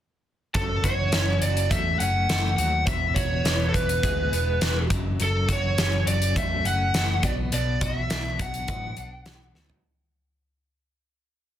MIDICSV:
0, 0, Header, 1, 5, 480
1, 0, Start_track
1, 0, Key_signature, 3, "minor"
1, 0, Tempo, 580271
1, 460, Time_signature, 4, 2, 24, 8
1, 9593, End_track
2, 0, Start_track
2, 0, Title_t, "Lead electric guitar"
2, 0, Program_c, 0, 29
2, 456, Note_on_c, 0, 69, 83
2, 697, Note_on_c, 0, 73, 90
2, 704, Note_off_c, 0, 69, 0
2, 1172, Note_off_c, 0, 73, 0
2, 1175, Note_on_c, 0, 74, 81
2, 1412, Note_on_c, 0, 76, 86
2, 1423, Note_off_c, 0, 74, 0
2, 1647, Note_off_c, 0, 76, 0
2, 1651, Note_on_c, 0, 78, 92
2, 2115, Note_off_c, 0, 78, 0
2, 2125, Note_on_c, 0, 78, 83
2, 2353, Note_off_c, 0, 78, 0
2, 2370, Note_on_c, 0, 76, 95
2, 2596, Note_off_c, 0, 76, 0
2, 2600, Note_on_c, 0, 73, 86
2, 3042, Note_off_c, 0, 73, 0
2, 3048, Note_on_c, 0, 69, 49
2, 3085, Note_on_c, 0, 71, 72
2, 3101, Note_off_c, 0, 69, 0
2, 4018, Note_off_c, 0, 71, 0
2, 4328, Note_on_c, 0, 69, 80
2, 4537, Note_off_c, 0, 69, 0
2, 4569, Note_on_c, 0, 73, 88
2, 5021, Note_off_c, 0, 73, 0
2, 5024, Note_on_c, 0, 74, 79
2, 5245, Note_off_c, 0, 74, 0
2, 5275, Note_on_c, 0, 76, 86
2, 5513, Note_off_c, 0, 76, 0
2, 5516, Note_on_c, 0, 78, 92
2, 5995, Note_on_c, 0, 74, 86
2, 6003, Note_off_c, 0, 78, 0
2, 6058, Note_off_c, 0, 74, 0
2, 6235, Note_on_c, 0, 74, 96
2, 6452, Note_off_c, 0, 74, 0
2, 6466, Note_on_c, 0, 76, 98
2, 6959, Note_off_c, 0, 76, 0
2, 6964, Note_on_c, 0, 78, 77
2, 7881, Note_off_c, 0, 78, 0
2, 9593, End_track
3, 0, Start_track
3, 0, Title_t, "Clean electric guitar"
3, 0, Program_c, 1, 27
3, 453, Note_on_c, 1, 42, 73
3, 697, Note_on_c, 1, 66, 68
3, 936, Note_on_c, 1, 61, 58
3, 1178, Note_on_c, 1, 54, 55
3, 1420, Note_on_c, 1, 57, 64
3, 1653, Note_off_c, 1, 42, 0
3, 1653, Note_off_c, 1, 61, 0
3, 1663, Note_on_c, 1, 61, 53
3, 1888, Note_off_c, 1, 57, 0
3, 1898, Note_on_c, 1, 57, 63
3, 2136, Note_off_c, 1, 54, 0
3, 2139, Note_on_c, 1, 54, 66
3, 2376, Note_off_c, 1, 57, 0
3, 2379, Note_off_c, 1, 61, 0
3, 2380, Note_on_c, 1, 40, 69
3, 2405, Note_off_c, 1, 54, 0
3, 2405, Note_off_c, 1, 66, 0
3, 2617, Note_on_c, 1, 66, 59
3, 2866, Note_on_c, 1, 59, 64
3, 3103, Note_on_c, 1, 52, 61
3, 3341, Note_on_c, 1, 56, 66
3, 3576, Note_off_c, 1, 59, 0
3, 3578, Note_off_c, 1, 40, 0
3, 3586, Note_on_c, 1, 59, 49
3, 3811, Note_off_c, 1, 56, 0
3, 3821, Note_on_c, 1, 56, 57
3, 3845, Note_off_c, 1, 66, 0
3, 4059, Note_off_c, 1, 56, 0
3, 4060, Note_off_c, 1, 52, 0
3, 4061, Note_off_c, 1, 59, 0
3, 4063, Note_on_c, 1, 42, 62
3, 4295, Note_off_c, 1, 42, 0
3, 4305, Note_on_c, 1, 42, 72
3, 4541, Note_on_c, 1, 66, 61
3, 4779, Note_on_c, 1, 61, 57
3, 5012, Note_on_c, 1, 54, 69
3, 5261, Note_on_c, 1, 57, 59
3, 5490, Note_off_c, 1, 61, 0
3, 5500, Note_on_c, 1, 61, 53
3, 5503, Note_off_c, 1, 42, 0
3, 5735, Note_off_c, 1, 57, 0
3, 5745, Note_on_c, 1, 57, 61
3, 5981, Note_off_c, 1, 61, 0
3, 5983, Note_off_c, 1, 57, 0
3, 5986, Note_on_c, 1, 47, 65
3, 6215, Note_off_c, 1, 47, 0
3, 6225, Note_on_c, 1, 47, 69
3, 6463, Note_off_c, 1, 66, 0
3, 6467, Note_on_c, 1, 66, 63
3, 6699, Note_on_c, 1, 62, 59
3, 6935, Note_off_c, 1, 54, 0
3, 6938, Note_on_c, 1, 54, 64
3, 7183, Note_on_c, 1, 59, 55
3, 7415, Note_off_c, 1, 62, 0
3, 7425, Note_off_c, 1, 47, 0
3, 7425, Note_on_c, 1, 62, 53
3, 7661, Note_off_c, 1, 59, 0
3, 7666, Note_off_c, 1, 66, 0
3, 7671, Note_on_c, 1, 59, 57
3, 7898, Note_off_c, 1, 54, 0
3, 7908, Note_on_c, 1, 54, 62
3, 8145, Note_off_c, 1, 62, 0
3, 8146, Note_off_c, 1, 54, 0
3, 8148, Note_off_c, 1, 59, 0
3, 9593, End_track
4, 0, Start_track
4, 0, Title_t, "Picked electric bass"
4, 0, Program_c, 2, 34
4, 452, Note_on_c, 2, 30, 81
4, 658, Note_off_c, 2, 30, 0
4, 693, Note_on_c, 2, 30, 86
4, 899, Note_off_c, 2, 30, 0
4, 933, Note_on_c, 2, 30, 84
4, 1139, Note_off_c, 2, 30, 0
4, 1176, Note_on_c, 2, 30, 77
4, 1380, Note_off_c, 2, 30, 0
4, 1413, Note_on_c, 2, 40, 90
4, 1618, Note_off_c, 2, 40, 0
4, 1655, Note_on_c, 2, 30, 70
4, 1859, Note_off_c, 2, 30, 0
4, 1894, Note_on_c, 2, 30, 85
4, 2099, Note_off_c, 2, 30, 0
4, 2134, Note_on_c, 2, 39, 81
4, 2338, Note_off_c, 2, 39, 0
4, 2374, Note_on_c, 2, 28, 79
4, 2578, Note_off_c, 2, 28, 0
4, 2614, Note_on_c, 2, 28, 76
4, 2818, Note_off_c, 2, 28, 0
4, 2852, Note_on_c, 2, 28, 78
4, 3057, Note_off_c, 2, 28, 0
4, 3095, Note_on_c, 2, 28, 78
4, 3299, Note_off_c, 2, 28, 0
4, 3335, Note_on_c, 2, 38, 89
4, 3539, Note_off_c, 2, 38, 0
4, 3576, Note_on_c, 2, 28, 75
4, 3780, Note_off_c, 2, 28, 0
4, 3814, Note_on_c, 2, 28, 86
4, 4019, Note_off_c, 2, 28, 0
4, 4055, Note_on_c, 2, 30, 91
4, 4259, Note_off_c, 2, 30, 0
4, 4300, Note_on_c, 2, 30, 79
4, 4503, Note_off_c, 2, 30, 0
4, 4538, Note_on_c, 2, 30, 81
4, 4742, Note_off_c, 2, 30, 0
4, 4778, Note_on_c, 2, 30, 84
4, 4982, Note_off_c, 2, 30, 0
4, 5018, Note_on_c, 2, 30, 72
4, 5222, Note_off_c, 2, 30, 0
4, 5262, Note_on_c, 2, 40, 85
4, 5465, Note_off_c, 2, 40, 0
4, 5498, Note_on_c, 2, 30, 75
4, 5703, Note_off_c, 2, 30, 0
4, 5739, Note_on_c, 2, 30, 83
4, 5944, Note_off_c, 2, 30, 0
4, 5979, Note_on_c, 2, 35, 75
4, 6184, Note_off_c, 2, 35, 0
4, 6224, Note_on_c, 2, 35, 77
4, 6427, Note_off_c, 2, 35, 0
4, 6461, Note_on_c, 2, 35, 81
4, 6666, Note_off_c, 2, 35, 0
4, 6710, Note_on_c, 2, 35, 71
4, 6911, Note_off_c, 2, 35, 0
4, 6945, Note_on_c, 2, 35, 71
4, 7148, Note_off_c, 2, 35, 0
4, 7181, Note_on_c, 2, 45, 76
4, 7386, Note_off_c, 2, 45, 0
4, 7429, Note_on_c, 2, 35, 69
4, 7631, Note_off_c, 2, 35, 0
4, 7669, Note_on_c, 2, 35, 79
4, 7871, Note_off_c, 2, 35, 0
4, 7907, Note_on_c, 2, 38, 83
4, 8110, Note_off_c, 2, 38, 0
4, 9593, End_track
5, 0, Start_track
5, 0, Title_t, "Drums"
5, 450, Note_on_c, 9, 42, 55
5, 453, Note_on_c, 9, 36, 107
5, 533, Note_off_c, 9, 42, 0
5, 536, Note_off_c, 9, 36, 0
5, 693, Note_on_c, 9, 36, 70
5, 693, Note_on_c, 9, 42, 54
5, 775, Note_off_c, 9, 36, 0
5, 776, Note_off_c, 9, 42, 0
5, 928, Note_on_c, 9, 42, 55
5, 932, Note_on_c, 9, 38, 98
5, 1011, Note_off_c, 9, 42, 0
5, 1014, Note_off_c, 9, 38, 0
5, 1172, Note_on_c, 9, 42, 56
5, 1255, Note_off_c, 9, 42, 0
5, 1297, Note_on_c, 9, 42, 55
5, 1380, Note_off_c, 9, 42, 0
5, 1413, Note_on_c, 9, 36, 93
5, 1416, Note_on_c, 9, 42, 65
5, 1496, Note_off_c, 9, 36, 0
5, 1498, Note_off_c, 9, 42, 0
5, 1657, Note_on_c, 9, 42, 57
5, 1740, Note_off_c, 9, 42, 0
5, 1898, Note_on_c, 9, 42, 58
5, 1901, Note_on_c, 9, 38, 91
5, 1981, Note_off_c, 9, 42, 0
5, 1984, Note_off_c, 9, 38, 0
5, 2137, Note_on_c, 9, 42, 55
5, 2220, Note_off_c, 9, 42, 0
5, 2371, Note_on_c, 9, 42, 54
5, 2373, Note_on_c, 9, 36, 103
5, 2454, Note_off_c, 9, 42, 0
5, 2456, Note_off_c, 9, 36, 0
5, 2614, Note_on_c, 9, 36, 77
5, 2615, Note_on_c, 9, 42, 55
5, 2697, Note_off_c, 9, 36, 0
5, 2697, Note_off_c, 9, 42, 0
5, 2856, Note_on_c, 9, 42, 59
5, 2859, Note_on_c, 9, 38, 91
5, 2938, Note_off_c, 9, 42, 0
5, 2942, Note_off_c, 9, 38, 0
5, 3096, Note_on_c, 9, 36, 78
5, 3102, Note_on_c, 9, 42, 51
5, 3179, Note_off_c, 9, 36, 0
5, 3184, Note_off_c, 9, 42, 0
5, 3220, Note_on_c, 9, 42, 53
5, 3303, Note_off_c, 9, 42, 0
5, 3337, Note_on_c, 9, 36, 102
5, 3341, Note_on_c, 9, 42, 58
5, 3419, Note_off_c, 9, 36, 0
5, 3424, Note_off_c, 9, 42, 0
5, 3581, Note_on_c, 9, 42, 47
5, 3664, Note_off_c, 9, 42, 0
5, 3817, Note_on_c, 9, 42, 52
5, 3820, Note_on_c, 9, 38, 97
5, 3899, Note_off_c, 9, 42, 0
5, 3903, Note_off_c, 9, 38, 0
5, 4056, Note_on_c, 9, 36, 92
5, 4056, Note_on_c, 9, 42, 57
5, 4139, Note_off_c, 9, 36, 0
5, 4139, Note_off_c, 9, 42, 0
5, 4298, Note_on_c, 9, 42, 56
5, 4381, Note_off_c, 9, 42, 0
5, 4538, Note_on_c, 9, 36, 72
5, 4538, Note_on_c, 9, 42, 58
5, 4621, Note_off_c, 9, 36, 0
5, 4621, Note_off_c, 9, 42, 0
5, 4781, Note_on_c, 9, 42, 60
5, 4785, Note_on_c, 9, 38, 103
5, 4864, Note_off_c, 9, 42, 0
5, 4867, Note_off_c, 9, 38, 0
5, 5023, Note_on_c, 9, 42, 64
5, 5106, Note_off_c, 9, 42, 0
5, 5143, Note_on_c, 9, 42, 56
5, 5226, Note_off_c, 9, 42, 0
5, 5262, Note_on_c, 9, 36, 102
5, 5263, Note_on_c, 9, 42, 60
5, 5344, Note_off_c, 9, 36, 0
5, 5346, Note_off_c, 9, 42, 0
5, 5504, Note_on_c, 9, 42, 51
5, 5587, Note_off_c, 9, 42, 0
5, 5742, Note_on_c, 9, 42, 54
5, 5745, Note_on_c, 9, 38, 90
5, 5825, Note_off_c, 9, 42, 0
5, 5828, Note_off_c, 9, 38, 0
5, 5980, Note_on_c, 9, 42, 57
5, 5982, Note_on_c, 9, 36, 82
5, 6063, Note_off_c, 9, 42, 0
5, 6065, Note_off_c, 9, 36, 0
5, 6221, Note_on_c, 9, 42, 57
5, 6304, Note_off_c, 9, 42, 0
5, 6462, Note_on_c, 9, 42, 55
5, 6463, Note_on_c, 9, 36, 78
5, 6544, Note_off_c, 9, 42, 0
5, 6546, Note_off_c, 9, 36, 0
5, 6702, Note_on_c, 9, 42, 60
5, 6705, Note_on_c, 9, 38, 103
5, 6784, Note_off_c, 9, 42, 0
5, 6788, Note_off_c, 9, 38, 0
5, 6944, Note_on_c, 9, 36, 79
5, 6944, Note_on_c, 9, 42, 61
5, 7026, Note_off_c, 9, 42, 0
5, 7027, Note_off_c, 9, 36, 0
5, 7063, Note_on_c, 9, 42, 53
5, 7146, Note_off_c, 9, 42, 0
5, 7179, Note_on_c, 9, 42, 58
5, 7183, Note_on_c, 9, 36, 97
5, 7262, Note_off_c, 9, 42, 0
5, 7266, Note_off_c, 9, 36, 0
5, 7417, Note_on_c, 9, 42, 50
5, 7500, Note_off_c, 9, 42, 0
5, 7657, Note_on_c, 9, 42, 47
5, 7660, Note_on_c, 9, 38, 91
5, 7739, Note_off_c, 9, 42, 0
5, 7743, Note_off_c, 9, 38, 0
5, 7901, Note_on_c, 9, 38, 50
5, 7984, Note_off_c, 9, 38, 0
5, 8020, Note_on_c, 9, 43, 70
5, 8103, Note_off_c, 9, 43, 0
5, 9593, End_track
0, 0, End_of_file